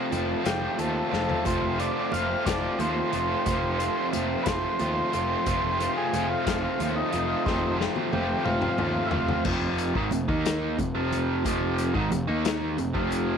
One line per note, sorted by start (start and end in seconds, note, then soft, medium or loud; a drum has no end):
0.00 1.44 F2 medium
0.00 0.13 C3 medium
0.00 0.11 F3 medium
0.00 0.11 A3 medium
0.00 0.12 C4 medium
0.00 0.13 F4 medium
0.11 0.33 F1 medium
0.11 0.46 F3 medium
0.11 0.46 A3 medium
0.11 0.45 C4 medium
0.11 0.44 F4 medium
0.11 closed hi-hat medium
0.11 high conga loud
0.11 low conga loud
0.44 0.67 F1 medium
0.44 0.77 F3 soft
0.44 0.78 A3 medium
0.44 0.79 C4 medium
0.44 0.79 F4 medium
0.44 0.79 G4 medium
0.44 snare loud
0.44 closed hi-hat medium
0.61 low conga medium
0.77 1.00 D#2 medium
0.77 1.13 F3 medium
0.77 1.12 A3 medium
0.77 1.12 C4 medium
0.77 1.11 F4 medium
0.77 1.44 A4 medium
0.77 closed hi-hat medium
0.77 high conga medium
0.77 low conga soft
0.96 low conga soft
1.11 1.33 F1 medium
1.11 1.45 F3 medium
1.11 1.45 A3 medium
1.11 1.46 C4 medium
1.11 1.46 F4 medium
1.11 snare medium
1.11 low conga medium
1.29 floor tom medium
1.44 1.87 F1 medium
1.44 3.45 F2 medium
1.44 2.13 C3 medium
1.44 1.79 F3 medium
1.44 1.79 A3 medium
1.44 1.79 C4 medium
1.44 1.78 F4 medium
1.44 1.79 C5 medium
1.44 kick medium
1.44 closed hi-hat medium
1.44 high conga loud
1.62 low conga medium
1.78 2.11 F3 medium
1.78 2.12 A3 medium
1.78 2.12 C4 medium
1.78 2.13 F4 medium
1.78 2.13 D5 medium
1.78 closed hi-hat medium
2.12 2.34 F1 medium
2.12 2.47 F3 medium
2.12 2.46 A3 medium
2.12 2.46 C4 medium
2.12 2.45 F4 medium
2.12 2.46 F5 medium
2.12 closed hi-hat medium
2.12 high conga loud
2.12 low conga loud
2.46 2.67 F1 medium
2.46 2.78 F3 medium
2.46 2.79 A3 soft
2.46 2.79 C4 medium
2.46 2.80 F4 medium
2.46 2.79 D5 medium
2.46 kick medium
2.46 snare loud
2.46 closed hi-hat medium
2.61 low conga medium
2.79 3.00 D#2 medium
2.79 3.14 F3 medium
2.79 3.14 A3 medium
2.79 3.13 C4 medium
2.79 3.12 F4 medium
2.79 4.09 C5 medium
2.79 closed hi-hat medium
2.79 high conga loud
2.97 low conga soft
3.13 3.34 F1 medium
3.13 3.46 F3 medium
3.13 3.46 A3 medium
3.13 3.47 C4 medium
3.13 3.47 F4 medium
3.13 closed hi-hat medium
3.13 low conga loud
3.46 3.87 F1 medium
3.46 5.46 F2 medium
3.46 4.13 C3 medium
3.46 3.81 F3 medium
3.46 3.80 A3 medium
3.46 3.79 C4 medium
3.46 3.79 F4 medium
3.46 kick loud
3.46 closed hi-hat medium
3.46 high conga medium
3.64 low conga medium
3.79 4.12 F3 medium
3.79 4.13 A3 medium
3.79 4.14 C4 medium
3.79 4.14 F4 medium
3.79 closed hi-hat medium
4.12 4.35 F1 medium
4.12 4.48 F3 medium
4.12 4.47 A3 medium
4.12 4.47 C4 medium
4.12 4.46 F4 medium
4.12 closed hi-hat medium
4.12 high conga loud
4.12 low conga medium
4.43 4.67 F1 medium
4.43 4.82 F4 medium
4.43 4.47 B4 medium
4.43 kick medium
4.43 snare loud
4.43 closed hi-hat loud
4.47 4.80 F3 soft
4.47 4.81 A3 soft
4.47 4.81 C4 medium
4.47 5.93 C5 loud
4.64 low conga medium
4.79 5.01 D#2 medium
4.79 5.15 F3 medium
4.79 5.14 A3 medium
4.79 5.13 C4 medium
4.79 5.13 F4 medium
4.79 closed hi-hat medium
4.79 high conga loud
5.13 5.35 F1 medium
5.13 5.46 F3 medium
5.13 5.47 A3 medium
5.13 5.47 C4 medium
5.13 5.47 F4 medium
5.13 closed hi-hat medium
5.13 low conga medium
5.46 5.87 F1 medium
5.46 7.45 F2 medium
5.46 6.13 C3 medium
5.46 5.82 F3 medium
5.46 5.81 A3 medium
5.46 5.81 C4 medium
5.46 5.80 F4 loud
5.46 kick loud
5.46 closed hi-hat medium
5.46 high conga medium
5.62 low conga medium
5.80 6.13 F3 medium
5.80 6.13 A3 medium
5.80 6.14 C4 medium
5.80 6.14 F4 medium
5.80 closed hi-hat medium
5.97 6.29 G#4 medium
6.13 6.34 F1 medium
6.13 6.48 F3 medium
6.13 6.47 A3 medium
6.13 6.47 C4 medium
6.13 6.46 F4 medium
6.13 closed hi-hat medium
6.13 high conga medium
6.13 low conga medium
6.30 6.62 F4 medium
6.46 6.67 F1 medium
6.46 6.80 F3 medium
6.46 6.80 A3 medium
6.46 6.81 C4 medium
6.46 6.81 F4 medium
6.46 kick medium
6.46 snare loud
6.46 closed hi-hat medium
6.64 6.96 F4 loud
6.64 low conga medium
6.79 7.01 D#2 medium
6.79 7.14 F3 medium
6.79 7.14 A3 medium
6.79 7.13 C4 medium
6.79 7.13 F4 medium
6.79 closed hi-hat medium
6.79 high conga medium
6.96 7.45 D#4 medium
6.96 low conga soft
7.13 7.34 F1 medium
7.13 7.46 F3 medium
7.13 7.46 A3 medium
7.13 7.46 C4 medium
7.13 7.47 F4 medium
7.13 closed hi-hat medium
7.13 low conga medium
7.45 7.87 F1 medium
7.45 8.13 F2 medium
7.45 8.13 C3 medium
7.45 7.77 D#3 medium
7.45 7.79 F3 medium
7.45 7.79 A3 loud
7.45 7.78 C4 loud
7.45 7.79 C4 loud
7.45 7.77 F4 medium
7.45 kick loud
7.45 snare medium
7.45 high conga medium
7.64 low conga medium
7.79 8.10 F3 medium
7.79 8.11 A3 medium
7.79 8.12 C4 medium
7.79 8.12 F4 medium
7.79 snare medium
7.96 high tom medium
8.12 8.33 F1 medium
8.12 8.46 F3 medium
8.12 8.45 A3 medium
8.12 8.44 C4 medium
8.12 8.44 F4 medium
8.12 8.45 G4 medium
8.12 high tom medium
8.12 high conga medium
8.12 low conga medium
8.45 8.66 F1 medium
8.45 8.77 F3 medium
8.45 8.78 A3 medium
8.45 8.78 C4 medium
8.45 9.10 F4 medium
8.45 8.79 F4 medium
8.45 mid tom medium
8.62 mid tom medium
8.62 low conga medium
8.78 8.99 D#2 medium
8.78 9.13 F3 medium
8.78 9.12 A3 medium
8.78 9.11 C4 medium
8.78 9.11 F4 medium
8.78 mid tom medium
8.78 high conga medium
8.78 low conga soft
9.07 9.11 E4 medium
9.11 9.33 F1 medium
9.11 9.45 F3 medium
9.11 9.44 A3 medium
9.11 9.44 C4 medium
9.11 9.44 F4 loud
9.11 9.43 F4 medium
9.11 floor tom loud
9.11 low conga medium
9.28 floor tom medium
9.44 9.92 F1 medium
9.44 9.95 F2 medium
9.44 9.95 C3 medium
9.44 9.95 F3 medium
9.44 kick medium
9.44 crash medium
9.44 high conga medium
9.61 low conga medium
9.78 closed hi-hat medium
9.95 10.11 G#1 medium
9.95 10.11 G#2 medium
9.95 10.12 D#3 loud
9.95 kick medium
10.11 10.28 F1 medium
10.11 10.29 F2 medium
10.11 10.28 C3 medium
10.11 closed hi-hat medium
10.11 high conga loud
10.11 low conga loud
10.28 10.75 D#2 medium
10.28 10.78 D#3 medium
10.28 10.78 A#3 medium
10.28 10.78 D#4 medium
10.28 kick loud
10.45 snare loud
10.45 closed hi-hat loud
10.61 low conga medium
10.78 10.94 F1 medium
10.78 10.94 F2 medium
10.78 10.94 C3 medium
10.78 kick medium
10.78 closed hi-hat medium
10.78 high conga loud
10.95 11.42 F1 medium
10.95 11.44 F2 medium
10.95 11.44 C3 medium
10.95 11.44 F3 medium
10.95 low conga soft
11.11 closed hi-hat medium
11.11 low conga loud
11.44 11.92 F1 medium
11.44 11.94 F2 medium
11.44 11.95 C3 medium
11.44 11.95 F3 medium
11.44 kick medium
11.44 closed hi-hat medium
11.44 high conga medium
11.61 low conga medium
11.78 closed hi-hat medium
11.95 12.11 G#1 medium
11.95 12.11 G#2 medium
11.95 12.11 D#3 medium
11.95 kick loud
12.10 12.28 F1 medium
12.10 12.29 F2 medium
12.10 12.27 C3 medium
12.10 closed hi-hat medium
12.10 high conga medium
12.10 low conga loud
12.28 12.75 D#2 medium
12.28 12.77 D#3 medium
12.28 12.77 A#3 medium
12.28 12.77 D#4 medium
12.45 snare loud
12.45 closed hi-hat medium
12.61 low conga medium
12.78 12.94 F1 medium
12.78 12.93 F2 medium
12.78 12.94 C3 medium
12.78 closed hi-hat medium
12.78 high conga loud
12.94 13.38 F1 medium
12.94 13.38 F2 medium
12.94 13.38 C3 medium
12.94 13.38 F3 medium
12.94 kick medium
13.11 closed hi-hat medium
13.11 low conga medium